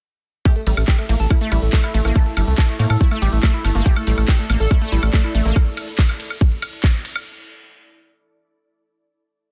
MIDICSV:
0, 0, Header, 1, 7, 480
1, 0, Start_track
1, 0, Tempo, 425532
1, 512, Time_signature, 4, 2, 24, 8
1, 10736, End_track
2, 0, Start_track
2, 0, Title_t, "Ambient pad"
2, 0, Program_c, 0, 92
2, 512, Note_on_c, 0, 64, 92
2, 607, Note_on_c, 0, 69, 89
2, 729, Note_on_c, 0, 76, 90
2, 4044, Note_on_c, 0, 74, 91
2, 4188, Note_off_c, 0, 76, 0
2, 6272, Note_off_c, 0, 64, 0
2, 6272, Note_off_c, 0, 69, 0
2, 6272, Note_off_c, 0, 74, 0
2, 10736, End_track
3, 0, Start_track
3, 0, Title_t, "Synth texture"
3, 0, Program_c, 1, 99
3, 4351, Note_on_c, 1, 69, 81
3, 6281, Note_off_c, 1, 69, 0
3, 10736, End_track
4, 0, Start_track
4, 0, Title_t, "Analog synth lead"
4, 0, Program_c, 2, 81
4, 512, Note_on_c, 2, 67, 103
4, 567, Note_off_c, 2, 67, 0
4, 632, Note_on_c, 2, 57, 64
4, 687, Note_off_c, 2, 57, 0
4, 751, Note_on_c, 2, 57, 67
4, 807, Note_off_c, 2, 57, 0
4, 871, Note_on_c, 2, 57, 66
4, 927, Note_off_c, 2, 57, 0
4, 991, Note_on_c, 2, 67, 99
4, 1047, Note_off_c, 2, 67, 0
4, 1111, Note_on_c, 2, 57, 66
4, 1166, Note_off_c, 2, 57, 0
4, 1231, Note_on_c, 2, 57, 63
4, 1287, Note_off_c, 2, 57, 0
4, 1351, Note_on_c, 2, 69, 95
4, 1407, Note_off_c, 2, 69, 0
4, 1471, Note_on_c, 2, 57, 66
4, 1527, Note_off_c, 2, 57, 0
4, 1591, Note_on_c, 2, 57, 68
4, 1647, Note_off_c, 2, 57, 0
4, 1711, Note_on_c, 2, 64, 94
4, 1767, Note_off_c, 2, 64, 0
4, 1832, Note_on_c, 2, 57, 65
4, 1887, Note_off_c, 2, 57, 0
4, 1952, Note_on_c, 2, 57, 66
4, 2007, Note_off_c, 2, 57, 0
4, 2072, Note_on_c, 2, 64, 94
4, 2127, Note_off_c, 2, 64, 0
4, 2192, Note_on_c, 2, 57, 61
4, 2247, Note_off_c, 2, 57, 0
4, 2312, Note_on_c, 2, 57, 66
4, 2367, Note_off_c, 2, 57, 0
4, 2432, Note_on_c, 2, 69, 104
4, 2487, Note_off_c, 2, 69, 0
4, 2552, Note_on_c, 2, 57, 65
4, 2607, Note_off_c, 2, 57, 0
4, 2672, Note_on_c, 2, 57, 67
4, 2727, Note_off_c, 2, 57, 0
4, 2792, Note_on_c, 2, 57, 66
4, 2847, Note_off_c, 2, 57, 0
4, 2912, Note_on_c, 2, 69, 99
4, 2967, Note_off_c, 2, 69, 0
4, 3032, Note_on_c, 2, 57, 65
4, 3087, Note_off_c, 2, 57, 0
4, 3152, Note_on_c, 2, 57, 65
4, 3207, Note_off_c, 2, 57, 0
4, 3272, Note_on_c, 2, 69, 96
4, 3327, Note_off_c, 2, 69, 0
4, 3392, Note_on_c, 2, 57, 67
4, 3447, Note_off_c, 2, 57, 0
4, 3512, Note_on_c, 2, 57, 63
4, 3567, Note_off_c, 2, 57, 0
4, 3631, Note_on_c, 2, 67, 96
4, 3687, Note_off_c, 2, 67, 0
4, 3752, Note_on_c, 2, 57, 63
4, 3807, Note_off_c, 2, 57, 0
4, 3872, Note_on_c, 2, 57, 65
4, 3927, Note_off_c, 2, 57, 0
4, 3992, Note_on_c, 2, 64, 91
4, 4047, Note_off_c, 2, 64, 0
4, 4111, Note_on_c, 2, 57, 62
4, 4167, Note_off_c, 2, 57, 0
4, 4232, Note_on_c, 2, 57, 65
4, 4287, Note_off_c, 2, 57, 0
4, 4352, Note_on_c, 2, 67, 100
4, 4407, Note_off_c, 2, 67, 0
4, 4472, Note_on_c, 2, 57, 66
4, 4527, Note_off_c, 2, 57, 0
4, 4592, Note_on_c, 2, 57, 68
4, 4647, Note_off_c, 2, 57, 0
4, 4711, Note_on_c, 2, 57, 66
4, 4767, Note_off_c, 2, 57, 0
4, 4831, Note_on_c, 2, 67, 101
4, 4887, Note_off_c, 2, 67, 0
4, 4951, Note_on_c, 2, 57, 66
4, 5007, Note_off_c, 2, 57, 0
4, 5071, Note_on_c, 2, 57, 65
4, 5127, Note_off_c, 2, 57, 0
4, 5191, Note_on_c, 2, 69, 95
4, 5247, Note_off_c, 2, 69, 0
4, 5311, Note_on_c, 2, 57, 65
4, 5367, Note_off_c, 2, 57, 0
4, 5431, Note_on_c, 2, 57, 68
4, 5487, Note_off_c, 2, 57, 0
4, 5551, Note_on_c, 2, 64, 92
4, 5606, Note_off_c, 2, 64, 0
4, 5671, Note_on_c, 2, 57, 64
4, 5727, Note_off_c, 2, 57, 0
4, 5791, Note_on_c, 2, 57, 65
4, 5847, Note_off_c, 2, 57, 0
4, 5912, Note_on_c, 2, 64, 93
4, 5967, Note_off_c, 2, 64, 0
4, 6032, Note_on_c, 2, 57, 63
4, 6087, Note_off_c, 2, 57, 0
4, 6152, Note_on_c, 2, 57, 66
4, 6207, Note_off_c, 2, 57, 0
4, 10736, End_track
5, 0, Start_track
5, 0, Title_t, "Synth arpeggio sound"
5, 0, Program_c, 3, 84
5, 512, Note_on_c, 3, 57, 83
5, 556, Note_off_c, 3, 57, 0
5, 752, Note_on_c, 3, 55, 74
5, 796, Note_off_c, 3, 55, 0
5, 1232, Note_on_c, 3, 58, 75
5, 1342, Note_off_c, 3, 58, 0
5, 1472, Note_on_c, 3, 64, 84
5, 1516, Note_off_c, 3, 64, 0
5, 1592, Note_on_c, 3, 57, 103
5, 1665, Note_off_c, 3, 57, 0
5, 1712, Note_on_c, 3, 55, 77
5, 1756, Note_off_c, 3, 55, 0
5, 1952, Note_on_c, 3, 57, 108
5, 2025, Note_off_c, 3, 57, 0
5, 2192, Note_on_c, 3, 57, 78
5, 2302, Note_off_c, 3, 57, 0
5, 2312, Note_on_c, 3, 58, 104
5, 2422, Note_off_c, 3, 58, 0
5, 2432, Note_on_c, 3, 57, 84
5, 2476, Note_off_c, 3, 57, 0
5, 2672, Note_on_c, 3, 55, 74
5, 2716, Note_off_c, 3, 55, 0
5, 3152, Note_on_c, 3, 58, 78
5, 3262, Note_off_c, 3, 58, 0
5, 3392, Note_on_c, 3, 64, 84
5, 3436, Note_off_c, 3, 64, 0
5, 3512, Note_on_c, 3, 57, 102
5, 3585, Note_off_c, 3, 57, 0
5, 3632, Note_on_c, 3, 55, 78
5, 3676, Note_off_c, 3, 55, 0
5, 3872, Note_on_c, 3, 57, 104
5, 3945, Note_off_c, 3, 57, 0
5, 4112, Note_on_c, 3, 57, 80
5, 4222, Note_off_c, 3, 57, 0
5, 4232, Note_on_c, 3, 58, 102
5, 4342, Note_off_c, 3, 58, 0
5, 4351, Note_on_c, 3, 57, 82
5, 4396, Note_off_c, 3, 57, 0
5, 4592, Note_on_c, 3, 55, 76
5, 4636, Note_off_c, 3, 55, 0
5, 5072, Note_on_c, 3, 58, 81
5, 5182, Note_off_c, 3, 58, 0
5, 5312, Note_on_c, 3, 64, 84
5, 5356, Note_off_c, 3, 64, 0
5, 5432, Note_on_c, 3, 57, 103
5, 5506, Note_off_c, 3, 57, 0
5, 5552, Note_on_c, 3, 55, 81
5, 5596, Note_off_c, 3, 55, 0
5, 5792, Note_on_c, 3, 57, 110
5, 5865, Note_off_c, 3, 57, 0
5, 6032, Note_on_c, 3, 57, 79
5, 6142, Note_off_c, 3, 57, 0
5, 6152, Note_on_c, 3, 58, 105
5, 6262, Note_off_c, 3, 58, 0
5, 10736, End_track
6, 0, Start_track
6, 0, Title_t, "Analog synth bass"
6, 0, Program_c, 4, 38
6, 752, Note_on_c, 4, 33, 95
6, 826, Note_off_c, 4, 33, 0
6, 872, Note_on_c, 4, 33, 81
6, 946, Note_off_c, 4, 33, 0
6, 1232, Note_on_c, 4, 33, 99
6, 1306, Note_off_c, 4, 33, 0
6, 1352, Note_on_c, 4, 33, 82
6, 1426, Note_off_c, 4, 33, 0
6, 1712, Note_on_c, 4, 33, 98
6, 1786, Note_off_c, 4, 33, 0
6, 1832, Note_on_c, 4, 33, 83
6, 1906, Note_off_c, 4, 33, 0
6, 2192, Note_on_c, 4, 33, 95
6, 2266, Note_off_c, 4, 33, 0
6, 2311, Note_on_c, 4, 33, 81
6, 2386, Note_off_c, 4, 33, 0
6, 2672, Note_on_c, 4, 31, 98
6, 2746, Note_off_c, 4, 31, 0
6, 2792, Note_on_c, 4, 36, 81
6, 2866, Note_off_c, 4, 36, 0
6, 3151, Note_on_c, 4, 45, 97
6, 3226, Note_off_c, 4, 45, 0
6, 3272, Note_on_c, 4, 45, 86
6, 3346, Note_off_c, 4, 45, 0
6, 3631, Note_on_c, 4, 33, 100
6, 3706, Note_off_c, 4, 33, 0
6, 3752, Note_on_c, 4, 33, 81
6, 3826, Note_off_c, 4, 33, 0
6, 4111, Note_on_c, 4, 31, 91
6, 4186, Note_off_c, 4, 31, 0
6, 4232, Note_on_c, 4, 31, 86
6, 4306, Note_off_c, 4, 31, 0
6, 4592, Note_on_c, 4, 33, 97
6, 4666, Note_off_c, 4, 33, 0
6, 4712, Note_on_c, 4, 33, 84
6, 4786, Note_off_c, 4, 33, 0
6, 5072, Note_on_c, 4, 33, 95
6, 5146, Note_off_c, 4, 33, 0
6, 5192, Note_on_c, 4, 33, 87
6, 5266, Note_off_c, 4, 33, 0
6, 5552, Note_on_c, 4, 33, 97
6, 5626, Note_off_c, 4, 33, 0
6, 5671, Note_on_c, 4, 33, 86
6, 5746, Note_off_c, 4, 33, 0
6, 6031, Note_on_c, 4, 33, 94
6, 6106, Note_off_c, 4, 33, 0
6, 6151, Note_on_c, 4, 33, 83
6, 6226, Note_off_c, 4, 33, 0
6, 10736, End_track
7, 0, Start_track
7, 0, Title_t, "Drums"
7, 511, Note_on_c, 9, 42, 81
7, 511, Note_on_c, 9, 76, 38
7, 512, Note_on_c, 9, 36, 121
7, 512, Note_on_c, 9, 54, 67
7, 624, Note_off_c, 9, 36, 0
7, 624, Note_off_c, 9, 42, 0
7, 624, Note_off_c, 9, 76, 0
7, 625, Note_off_c, 9, 54, 0
7, 632, Note_on_c, 9, 42, 58
7, 632, Note_on_c, 9, 54, 38
7, 744, Note_off_c, 9, 42, 0
7, 744, Note_off_c, 9, 54, 0
7, 751, Note_on_c, 9, 46, 109
7, 751, Note_on_c, 9, 51, 80
7, 864, Note_off_c, 9, 46, 0
7, 864, Note_off_c, 9, 51, 0
7, 867, Note_on_c, 9, 54, 79
7, 871, Note_on_c, 9, 42, 58
7, 871, Note_on_c, 9, 76, 78
7, 979, Note_off_c, 9, 54, 0
7, 984, Note_off_c, 9, 42, 0
7, 984, Note_off_c, 9, 76, 0
7, 989, Note_on_c, 9, 54, 62
7, 992, Note_on_c, 9, 36, 127
7, 992, Note_on_c, 9, 39, 126
7, 992, Note_on_c, 9, 42, 83
7, 1102, Note_off_c, 9, 54, 0
7, 1104, Note_off_c, 9, 36, 0
7, 1104, Note_off_c, 9, 39, 0
7, 1104, Note_off_c, 9, 42, 0
7, 1108, Note_on_c, 9, 54, 40
7, 1111, Note_on_c, 9, 42, 56
7, 1111, Note_on_c, 9, 76, 37
7, 1221, Note_off_c, 9, 54, 0
7, 1224, Note_off_c, 9, 42, 0
7, 1224, Note_off_c, 9, 76, 0
7, 1232, Note_on_c, 9, 46, 92
7, 1232, Note_on_c, 9, 51, 79
7, 1344, Note_off_c, 9, 46, 0
7, 1344, Note_off_c, 9, 51, 0
7, 1349, Note_on_c, 9, 54, 81
7, 1351, Note_on_c, 9, 42, 57
7, 1462, Note_off_c, 9, 54, 0
7, 1464, Note_off_c, 9, 42, 0
7, 1469, Note_on_c, 9, 54, 72
7, 1471, Note_on_c, 9, 36, 121
7, 1471, Note_on_c, 9, 42, 87
7, 1471, Note_on_c, 9, 76, 77
7, 1582, Note_off_c, 9, 54, 0
7, 1584, Note_off_c, 9, 36, 0
7, 1584, Note_off_c, 9, 42, 0
7, 1584, Note_off_c, 9, 76, 0
7, 1588, Note_on_c, 9, 54, 39
7, 1591, Note_on_c, 9, 42, 57
7, 1701, Note_off_c, 9, 54, 0
7, 1704, Note_off_c, 9, 42, 0
7, 1711, Note_on_c, 9, 46, 111
7, 1711, Note_on_c, 9, 51, 77
7, 1711, Note_on_c, 9, 76, 38
7, 1824, Note_off_c, 9, 46, 0
7, 1824, Note_off_c, 9, 51, 0
7, 1824, Note_off_c, 9, 76, 0
7, 1826, Note_on_c, 9, 54, 76
7, 1832, Note_on_c, 9, 42, 57
7, 1939, Note_off_c, 9, 54, 0
7, 1944, Note_off_c, 9, 42, 0
7, 1951, Note_on_c, 9, 39, 127
7, 1951, Note_on_c, 9, 42, 86
7, 1952, Note_on_c, 9, 36, 124
7, 1953, Note_on_c, 9, 54, 62
7, 2064, Note_off_c, 9, 36, 0
7, 2064, Note_off_c, 9, 39, 0
7, 2064, Note_off_c, 9, 42, 0
7, 2066, Note_off_c, 9, 54, 0
7, 2072, Note_on_c, 9, 42, 56
7, 2072, Note_on_c, 9, 76, 79
7, 2075, Note_on_c, 9, 54, 38
7, 2184, Note_off_c, 9, 42, 0
7, 2184, Note_off_c, 9, 76, 0
7, 2188, Note_off_c, 9, 54, 0
7, 2191, Note_on_c, 9, 46, 96
7, 2191, Note_on_c, 9, 51, 79
7, 2304, Note_off_c, 9, 46, 0
7, 2304, Note_off_c, 9, 51, 0
7, 2310, Note_on_c, 9, 54, 76
7, 2312, Note_on_c, 9, 42, 56
7, 2312, Note_on_c, 9, 76, 38
7, 2423, Note_off_c, 9, 54, 0
7, 2424, Note_off_c, 9, 42, 0
7, 2424, Note_off_c, 9, 76, 0
7, 2432, Note_on_c, 9, 36, 127
7, 2432, Note_on_c, 9, 42, 81
7, 2433, Note_on_c, 9, 54, 68
7, 2544, Note_off_c, 9, 36, 0
7, 2544, Note_off_c, 9, 42, 0
7, 2546, Note_off_c, 9, 54, 0
7, 2552, Note_on_c, 9, 42, 56
7, 2555, Note_on_c, 9, 54, 43
7, 2664, Note_off_c, 9, 42, 0
7, 2668, Note_off_c, 9, 54, 0
7, 2672, Note_on_c, 9, 46, 112
7, 2672, Note_on_c, 9, 51, 75
7, 2672, Note_on_c, 9, 76, 75
7, 2784, Note_off_c, 9, 46, 0
7, 2784, Note_off_c, 9, 51, 0
7, 2784, Note_off_c, 9, 76, 0
7, 2792, Note_on_c, 9, 42, 54
7, 2795, Note_on_c, 9, 54, 95
7, 2904, Note_off_c, 9, 42, 0
7, 2908, Note_off_c, 9, 54, 0
7, 2911, Note_on_c, 9, 36, 127
7, 2912, Note_on_c, 9, 39, 127
7, 2912, Note_on_c, 9, 42, 82
7, 2912, Note_on_c, 9, 76, 39
7, 3024, Note_off_c, 9, 36, 0
7, 3025, Note_off_c, 9, 39, 0
7, 3025, Note_off_c, 9, 42, 0
7, 3025, Note_off_c, 9, 76, 0
7, 3032, Note_on_c, 9, 42, 53
7, 3032, Note_on_c, 9, 54, 39
7, 3145, Note_off_c, 9, 42, 0
7, 3145, Note_off_c, 9, 54, 0
7, 3152, Note_on_c, 9, 46, 92
7, 3152, Note_on_c, 9, 51, 79
7, 3265, Note_off_c, 9, 46, 0
7, 3265, Note_off_c, 9, 51, 0
7, 3272, Note_on_c, 9, 42, 54
7, 3272, Note_on_c, 9, 54, 86
7, 3272, Note_on_c, 9, 76, 76
7, 3384, Note_off_c, 9, 42, 0
7, 3384, Note_off_c, 9, 76, 0
7, 3385, Note_off_c, 9, 54, 0
7, 3391, Note_on_c, 9, 54, 69
7, 3392, Note_on_c, 9, 36, 123
7, 3392, Note_on_c, 9, 42, 85
7, 3504, Note_off_c, 9, 36, 0
7, 3504, Note_off_c, 9, 42, 0
7, 3504, Note_off_c, 9, 54, 0
7, 3512, Note_on_c, 9, 42, 54
7, 3512, Note_on_c, 9, 76, 39
7, 3517, Note_on_c, 9, 54, 43
7, 3624, Note_off_c, 9, 42, 0
7, 3624, Note_off_c, 9, 76, 0
7, 3629, Note_off_c, 9, 54, 0
7, 3632, Note_on_c, 9, 46, 113
7, 3632, Note_on_c, 9, 51, 80
7, 3745, Note_off_c, 9, 46, 0
7, 3745, Note_off_c, 9, 51, 0
7, 3745, Note_on_c, 9, 54, 76
7, 3752, Note_on_c, 9, 42, 56
7, 3858, Note_off_c, 9, 54, 0
7, 3865, Note_off_c, 9, 42, 0
7, 3872, Note_on_c, 9, 36, 127
7, 3872, Note_on_c, 9, 39, 127
7, 3872, Note_on_c, 9, 42, 83
7, 3872, Note_on_c, 9, 76, 81
7, 3874, Note_on_c, 9, 54, 71
7, 3984, Note_off_c, 9, 36, 0
7, 3985, Note_off_c, 9, 39, 0
7, 3985, Note_off_c, 9, 42, 0
7, 3985, Note_off_c, 9, 76, 0
7, 3987, Note_off_c, 9, 54, 0
7, 3991, Note_on_c, 9, 54, 42
7, 3992, Note_on_c, 9, 42, 57
7, 4104, Note_off_c, 9, 54, 0
7, 4105, Note_off_c, 9, 42, 0
7, 4112, Note_on_c, 9, 46, 102
7, 4112, Note_on_c, 9, 51, 79
7, 4112, Note_on_c, 9, 76, 38
7, 4225, Note_off_c, 9, 46, 0
7, 4225, Note_off_c, 9, 51, 0
7, 4225, Note_off_c, 9, 76, 0
7, 4232, Note_on_c, 9, 42, 54
7, 4236, Note_on_c, 9, 54, 90
7, 4345, Note_off_c, 9, 42, 0
7, 4349, Note_off_c, 9, 54, 0
7, 4351, Note_on_c, 9, 36, 127
7, 4352, Note_on_c, 9, 42, 77
7, 4352, Note_on_c, 9, 54, 78
7, 4464, Note_off_c, 9, 36, 0
7, 4464, Note_off_c, 9, 42, 0
7, 4464, Note_off_c, 9, 54, 0
7, 4472, Note_on_c, 9, 42, 55
7, 4472, Note_on_c, 9, 76, 80
7, 4473, Note_on_c, 9, 54, 41
7, 4585, Note_off_c, 9, 42, 0
7, 4585, Note_off_c, 9, 76, 0
7, 4586, Note_off_c, 9, 54, 0
7, 4592, Note_on_c, 9, 46, 112
7, 4592, Note_on_c, 9, 51, 74
7, 4704, Note_off_c, 9, 46, 0
7, 4704, Note_off_c, 9, 51, 0
7, 4712, Note_on_c, 9, 42, 52
7, 4712, Note_on_c, 9, 76, 41
7, 4715, Note_on_c, 9, 54, 92
7, 4824, Note_off_c, 9, 42, 0
7, 4824, Note_off_c, 9, 76, 0
7, 4828, Note_off_c, 9, 54, 0
7, 4831, Note_on_c, 9, 36, 127
7, 4832, Note_on_c, 9, 39, 123
7, 4832, Note_on_c, 9, 42, 77
7, 4835, Note_on_c, 9, 54, 72
7, 4944, Note_off_c, 9, 36, 0
7, 4944, Note_off_c, 9, 39, 0
7, 4944, Note_off_c, 9, 42, 0
7, 4948, Note_off_c, 9, 54, 0
7, 4948, Note_on_c, 9, 54, 40
7, 4951, Note_on_c, 9, 42, 52
7, 5060, Note_off_c, 9, 54, 0
7, 5064, Note_off_c, 9, 42, 0
7, 5072, Note_on_c, 9, 46, 97
7, 5072, Note_on_c, 9, 51, 74
7, 5072, Note_on_c, 9, 76, 77
7, 5184, Note_off_c, 9, 46, 0
7, 5184, Note_off_c, 9, 51, 0
7, 5184, Note_off_c, 9, 76, 0
7, 5192, Note_on_c, 9, 42, 52
7, 5192, Note_on_c, 9, 54, 87
7, 5304, Note_off_c, 9, 42, 0
7, 5305, Note_off_c, 9, 54, 0
7, 5311, Note_on_c, 9, 36, 127
7, 5312, Note_on_c, 9, 42, 79
7, 5312, Note_on_c, 9, 54, 76
7, 5312, Note_on_c, 9, 76, 41
7, 5424, Note_off_c, 9, 36, 0
7, 5424, Note_off_c, 9, 42, 0
7, 5424, Note_off_c, 9, 76, 0
7, 5425, Note_off_c, 9, 54, 0
7, 5431, Note_on_c, 9, 42, 54
7, 5439, Note_on_c, 9, 54, 41
7, 5544, Note_off_c, 9, 42, 0
7, 5551, Note_off_c, 9, 54, 0
7, 5551, Note_on_c, 9, 46, 115
7, 5551, Note_on_c, 9, 51, 76
7, 5664, Note_off_c, 9, 46, 0
7, 5664, Note_off_c, 9, 51, 0
7, 5670, Note_on_c, 9, 54, 77
7, 5671, Note_on_c, 9, 76, 83
7, 5783, Note_off_c, 9, 54, 0
7, 5784, Note_off_c, 9, 76, 0
7, 5791, Note_on_c, 9, 36, 127
7, 5791, Note_on_c, 9, 39, 127
7, 5791, Note_on_c, 9, 42, 83
7, 5792, Note_on_c, 9, 54, 69
7, 5904, Note_off_c, 9, 36, 0
7, 5904, Note_off_c, 9, 39, 0
7, 5904, Note_off_c, 9, 42, 0
7, 5905, Note_off_c, 9, 54, 0
7, 5912, Note_on_c, 9, 42, 54
7, 5912, Note_on_c, 9, 76, 41
7, 5914, Note_on_c, 9, 54, 42
7, 6024, Note_off_c, 9, 42, 0
7, 6024, Note_off_c, 9, 76, 0
7, 6027, Note_off_c, 9, 54, 0
7, 6031, Note_on_c, 9, 46, 102
7, 6031, Note_on_c, 9, 51, 78
7, 6144, Note_off_c, 9, 46, 0
7, 6144, Note_off_c, 9, 51, 0
7, 6148, Note_on_c, 9, 54, 75
7, 6151, Note_on_c, 9, 42, 52
7, 6260, Note_off_c, 9, 54, 0
7, 6264, Note_off_c, 9, 42, 0
7, 6270, Note_on_c, 9, 54, 72
7, 6271, Note_on_c, 9, 36, 127
7, 6271, Note_on_c, 9, 42, 77
7, 6271, Note_on_c, 9, 76, 83
7, 6382, Note_off_c, 9, 54, 0
7, 6384, Note_off_c, 9, 36, 0
7, 6384, Note_off_c, 9, 42, 0
7, 6384, Note_off_c, 9, 76, 0
7, 6390, Note_on_c, 9, 54, 40
7, 6391, Note_on_c, 9, 42, 52
7, 6502, Note_off_c, 9, 54, 0
7, 6504, Note_off_c, 9, 42, 0
7, 6511, Note_on_c, 9, 46, 111
7, 6511, Note_on_c, 9, 51, 79
7, 6511, Note_on_c, 9, 76, 42
7, 6624, Note_off_c, 9, 46, 0
7, 6624, Note_off_c, 9, 51, 0
7, 6624, Note_off_c, 9, 76, 0
7, 6631, Note_on_c, 9, 42, 51
7, 6635, Note_on_c, 9, 54, 92
7, 6744, Note_off_c, 9, 42, 0
7, 6748, Note_off_c, 9, 54, 0
7, 6751, Note_on_c, 9, 36, 127
7, 6751, Note_on_c, 9, 39, 121
7, 6751, Note_on_c, 9, 42, 78
7, 6756, Note_on_c, 9, 54, 73
7, 6864, Note_off_c, 9, 36, 0
7, 6864, Note_off_c, 9, 39, 0
7, 6864, Note_off_c, 9, 42, 0
7, 6866, Note_off_c, 9, 54, 0
7, 6866, Note_on_c, 9, 54, 39
7, 6871, Note_on_c, 9, 42, 49
7, 6871, Note_on_c, 9, 76, 82
7, 6979, Note_off_c, 9, 54, 0
7, 6984, Note_off_c, 9, 42, 0
7, 6984, Note_off_c, 9, 76, 0
7, 6991, Note_on_c, 9, 46, 98
7, 6991, Note_on_c, 9, 51, 75
7, 7104, Note_off_c, 9, 46, 0
7, 7104, Note_off_c, 9, 51, 0
7, 7111, Note_on_c, 9, 42, 50
7, 7111, Note_on_c, 9, 76, 41
7, 7112, Note_on_c, 9, 54, 81
7, 7224, Note_off_c, 9, 42, 0
7, 7224, Note_off_c, 9, 76, 0
7, 7225, Note_off_c, 9, 54, 0
7, 7231, Note_on_c, 9, 36, 123
7, 7231, Note_on_c, 9, 42, 80
7, 7236, Note_on_c, 9, 54, 68
7, 7344, Note_off_c, 9, 36, 0
7, 7344, Note_off_c, 9, 42, 0
7, 7349, Note_off_c, 9, 54, 0
7, 7351, Note_on_c, 9, 42, 53
7, 7353, Note_on_c, 9, 54, 39
7, 7464, Note_off_c, 9, 42, 0
7, 7465, Note_off_c, 9, 54, 0
7, 7471, Note_on_c, 9, 46, 114
7, 7471, Note_on_c, 9, 51, 79
7, 7471, Note_on_c, 9, 76, 82
7, 7584, Note_off_c, 9, 46, 0
7, 7584, Note_off_c, 9, 51, 0
7, 7584, Note_off_c, 9, 76, 0
7, 7591, Note_on_c, 9, 42, 54
7, 7591, Note_on_c, 9, 54, 76
7, 7703, Note_off_c, 9, 54, 0
7, 7703, Note_on_c, 9, 54, 74
7, 7704, Note_off_c, 9, 42, 0
7, 7711, Note_on_c, 9, 36, 127
7, 7711, Note_on_c, 9, 39, 123
7, 7711, Note_on_c, 9, 42, 81
7, 7711, Note_on_c, 9, 76, 42
7, 7816, Note_off_c, 9, 54, 0
7, 7824, Note_off_c, 9, 36, 0
7, 7824, Note_off_c, 9, 39, 0
7, 7824, Note_off_c, 9, 42, 0
7, 7824, Note_off_c, 9, 76, 0
7, 7831, Note_on_c, 9, 42, 51
7, 7835, Note_on_c, 9, 54, 38
7, 7944, Note_off_c, 9, 42, 0
7, 7948, Note_off_c, 9, 54, 0
7, 7951, Note_on_c, 9, 46, 102
7, 7951, Note_on_c, 9, 51, 79
7, 8064, Note_off_c, 9, 46, 0
7, 8064, Note_off_c, 9, 51, 0
7, 8070, Note_on_c, 9, 54, 88
7, 8071, Note_on_c, 9, 42, 51
7, 8071, Note_on_c, 9, 76, 80
7, 8183, Note_off_c, 9, 54, 0
7, 8184, Note_off_c, 9, 42, 0
7, 8184, Note_off_c, 9, 76, 0
7, 10736, End_track
0, 0, End_of_file